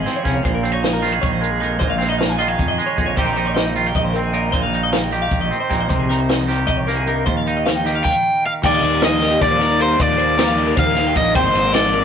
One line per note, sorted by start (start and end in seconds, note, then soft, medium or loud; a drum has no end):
0.00 0.75 F3 medium
0.00 0.23 C#4 medium
0.00 0.44 G#4 medium
0.00 0.16 D#5 medium
0.06 0.42 C4 medium
0.06 snare soft
0.06 closed hi-hat medium
0.16 0.25 C#5 medium
0.24 0.43 C2 medium
0.24 0.41 C#3 medium
0.24 0.41 C#4 soft
0.24 0.35 G#4 medium
0.24 kick medium
0.24 snare soft
0.24 closed hi-hat medium
0.35 0.44 C#5 medium
0.43 1.18 A#1 loud
0.43 1.02 A#2 medium
0.43 0.54 C5 medium
0.43 kick loud
0.43 closed hi-hat medium
0.54 0.64 A#4 medium
0.63 0.72 C4 medium
0.63 0.73 C5 medium
0.63 closed hi-hat medium
0.72 1.60 D#4 soft
0.72 0.82 C#5 medium
0.82 0.92 D#5 medium
0.82 snare loud
0.82 closed hi-hat medium
0.93 1.12 A#4 medium
1.02 2.37 D#3 medium
1.02 1.13 F4 soft
1.02 snare soft
1.02 closed hi-hat medium
1.13 1.80 G#4 soft
1.22 1.77 A#1 medium
1.22 1.31 C#5 medium
1.22 kick loud
1.22 closed hi-hat medium
1.31 1.42 C5 medium
1.41 2.77 G#3 medium
1.41 1.51 A#4 medium
1.41 closed hi-hat medium
1.51 1.60 G#4 medium
1.60 1.78 F2 medium
1.60 1.98 D#4 medium
1.60 1.79 A#4 medium
1.60 closed hi-hat medium
1.79 2.55 A#1 loud
1.79 2.38 A#2 medium
1.79 1.89 C5 loud
1.79 kick loud
1.79 closed hi-hat medium
1.90 2.09 F5 medium
1.98 2.09 C4 medium
1.98 snare soft
1.98 closed hi-hat medium
2.09 2.96 D#4 soft
2.09 2.18 D#5 medium
2.19 2.29 F5 medium
2.19 snare loud
2.19 closed hi-hat medium
2.29 2.38 G#5 medium
2.38 3.15 D#3 medium
2.38 2.48 F4 soft
2.38 2.48 D#5 medium
2.38 closed hi-hat medium
2.48 3.16 G#4 soft
2.48 2.68 F5 medium
2.59 2.77 F2 medium
2.59 kick medium
2.59 closed hi-hat medium
2.68 2.86 D#5 medium
2.78 3.17 G#3 medium
2.78 closed hi-hat medium
2.86 2.97 C#5 medium
2.96 3.15 A#1 medium
2.96 3.14 F2 medium
2.96 3.18 D#4 soft
2.96 3.06 G#4 medium
2.96 kick medium
2.96 closed hi-hat medium
3.06 3.16 C#5 medium
3.16 3.91 A#1 loud
3.16 3.75 A#2 medium
3.16 3.75 D#3 soft
3.16 4.16 C4 medium
3.16 3.37 D#4 soft
3.16 3.76 G4 medium
3.16 3.26 C5 medium
3.16 kick loud
3.16 closed hi-hat medium
3.26 3.36 A#4 medium
3.36 4.33 D#4 medium
3.36 3.46 C5 medium
3.36 closed hi-hat medium
3.46 3.54 C#5 medium
3.54 3.66 D#5 medium
3.54 snare loud
3.54 closed hi-hat medium
3.66 3.85 C5 medium
3.75 5.10 D#3 medium
3.75 3.86 F4 soft
3.75 closed hi-hat medium
3.86 4.54 G4 soft
3.95 4.49 A#1 medium
3.95 4.04 D#5 medium
3.95 kick medium
3.95 closed hi-hat medium
4.04 4.14 C5 medium
4.13 4.57 C4 medium
4.13 4.23 A#4 medium
4.13 closed hi-hat medium
4.23 4.33 G#4 medium
4.33 4.53 A#2 medium
4.33 4.74 D#4 medium
4.33 4.53 A#4 medium
4.33 closed hi-hat medium
4.52 5.27 A#1 medium
4.52 5.12 A#2 medium
4.52 4.62 C5 medium
4.52 kick loud
4.52 closed hi-hat medium
4.62 4.82 F5 medium
4.73 5.70 D#4 medium
4.73 closed hi-hat medium
4.83 4.92 D#5 medium
4.93 5.03 F5 medium
4.93 snare loud
4.93 closed hi-hat medium
5.03 5.12 G5 medium
5.11 6.47 D#3 medium
5.11 6.48 G4 medium
5.11 5.22 D#5 medium
5.11 closed hi-hat medium
5.22 5.41 F5 medium
5.31 5.49 A#1 medium
5.31 kick medium
5.31 closed hi-hat medium
5.41 5.60 D#5 medium
5.51 6.88 C4 medium
5.51 closed hi-hat medium
5.60 5.70 C5 medium
5.70 5.89 A#1 medium
5.70 5.89 A#2 medium
5.70 6.10 D#4 medium
5.70 5.80 G4 medium
5.70 kick medium
5.70 snare soft
5.70 closed hi-hat medium
5.80 5.88 C5 medium
5.89 6.64 C2 loud
5.89 6.48 C3 medium
5.89 5.99 C5 medium
5.89 kick loud
5.89 closed hi-hat medium
5.99 6.09 G#4 medium
6.09 7.07 D#4 medium
6.09 6.19 A#4 medium
6.09 snare soft
6.09 closed hi-hat medium
6.19 6.29 C5 medium
6.29 6.39 D#5 medium
6.29 snare loud
6.29 closed hi-hat medium
6.39 6.58 C5 medium
6.48 7.84 D#3 medium
6.48 7.24 G4 medium
6.48 snare soft
6.48 closed hi-hat medium
6.67 7.23 C2 medium
6.67 6.77 D#5 medium
6.67 kick medium
6.67 closed hi-hat medium
6.77 6.87 C#5 medium
6.87 7.25 A#3 medium
6.87 6.97 A#4 medium
6.87 snare soft
6.87 closed hi-hat medium
6.97 7.06 G#4 medium
7.06 7.24 G2 medium
7.06 7.25 D#4 medium
7.06 7.26 A#4 medium
7.06 closed hi-hat medium
7.26 9.41 D#2 medium
7.26 8.01 D#2 loud
7.26 7.36 C5 medium
7.26 kick loud
7.26 closed hi-hat medium
7.37 7.56 F5 medium
7.47 8.03 D#4 medium
7.47 closed hi-hat medium
7.57 7.65 D#5 medium
7.66 7.75 F5 medium
7.66 snare loud
7.66 closed hi-hat medium
7.76 7.86 G5 medium
7.85 9.41 D#3 medium
7.85 8.03 G4 soft
7.85 7.95 D#5 medium
7.85 snare soft
7.85 closed hi-hat medium
7.95 8.15 F5 medium
8.04 8.45 G5 medium
8.04 kick medium
8.04 crash medium
8.46 8.51 F5 medium
8.63 9.01 D#2 medium
8.63 8.82 D#2 loud
8.63 9.01 A#2 loud
8.63 9.02 D#3 medium
8.63 9.03 G3 loud
8.63 9.03 A#3 loud
8.63 9.03 D#4 loud
8.63 9.04 D5 medium
8.63 8.74 G5 loud
8.63 kick loud
8.63 crash loud
8.74 8.83 D#5 medium
8.82 9.37 D#2 loud
8.82 8.93 C5 medium
8.82 ride medium
8.93 9.03 A#4 medium
9.01 9.60 D#2 medium
9.01 9.61 A#2 medium
9.01 9.39 D#3 loud
9.01 9.41 G3 loud
9.01 9.41 A#3 medium
9.01 9.41 D#4 loud
9.01 9.22 D#5 medium
9.01 9.42 D#5 medium
9.01 snare loud
9.01 ride loud
9.22 9.32 A#4 medium
9.22 snare soft
9.22 ride medium
9.31 9.41 G4 medium
9.40 9.96 D#2 loud
9.40 9.60 D#3 medium
9.40 9.60 G3 medium
9.40 9.59 A#3 medium
9.40 9.59 D#4 medium
9.40 9.51 D5 medium
9.40 9.82 D5 medium
9.40 kick loud
9.40 snare soft
9.40 ride loud
9.51 9.59 C5 medium
9.59 9.78 D#3 medium
9.59 9.79 G3 medium
9.59 9.80 A#3 medium
9.59 9.81 D#4 medium
9.59 9.79 A#4 medium
9.59 snare soft
9.59 ride medium
9.79 9.98 D#3 medium
9.79 9.99 G3 medium
9.79 10.00 A#3 medium
9.79 10.00 D#4 medium
9.79 9.90 A#4 medium
9.79 10.01 C5 medium
9.79 ride medium
9.90 9.99 D5 medium
9.98 10.36 D#2 medium
9.98 10.73 D#2 loud
9.98 10.37 A#2 medium
9.98 10.37 D#3 loud
9.98 10.38 G3 medium
9.98 10.38 A#3 loud
9.98 10.39 D#4 loud
9.98 10.17 A#4 loud
9.98 10.78 D5 loud
9.98 kick loud
9.98 ride loud
10.18 10.37 C5 medium
10.18 ride medium
10.37 10.96 D#2 medium
10.37 10.96 A#2 loud
10.37 10.75 D#3 loud
10.37 10.76 G3 loud
10.37 10.77 A#3 loud
10.37 10.78 D#4 loud
10.37 10.48 A#4 medium
10.37 snare loud
10.37 ride loud
10.47 10.57 F5 medium
10.57 10.67 D#5 medium
10.57 ride medium
10.67 10.76 A#4 medium
10.76 11.13 D#2 loud
10.76 10.95 D#3 medium
10.76 10.96 G3 medium
10.76 10.95 A#3 medium
10.76 10.95 D#4 medium
10.76 10.86 C5 loud
10.76 11.17 F5 loud
10.76 kick loud
10.76 ride loud
10.86 11.06 A#4 medium
10.95 11.13 D#3 medium
10.95 11.15 G3 medium
10.95 11.15 A#3 medium
10.95 11.16 D#4 medium
10.95 snare soft
10.95 ride medium
11.06 11.16 G5 medium
11.14 11.34 A#1 medium
11.14 11.33 D#3 medium
11.14 11.35 G3 medium
11.14 11.35 A#3 medium
11.14 11.36 D#4 medium
11.14 11.35 D#5 medium
11.14 11.36 D#5 loud
11.14 kick medium
11.14 ride medium
11.34 11.52 G#1 loud
11.34 11.72 G#2 loud
11.34 11.72 D#3 medium
11.34 11.73 G#3 loud
11.34 11.73 A#3 loud
11.34 11.74 D#4 loud
11.34 11.72 C5 loud
11.34 11.45 G5 loud
11.34 kick loud
11.34 ride loud
11.46 11.55 D#5 medium
11.53 12.04 G#1 loud
11.53 11.64 C5 medium
11.53 snare soft
11.53 ride medium
11.64 11.74 A#4 medium
11.72 12.04 G#2 medium
11.72 12.04 D#3 loud
11.72 12.04 G#3 loud
11.72 12.04 A#3 loud
11.72 12.04 D#4 loud
11.72 12.04 D5 loud
11.72 11.93 D#5 medium
11.72 snare loud
11.72 ride loud
11.94 12.03 A#4 medium
11.94 ride medium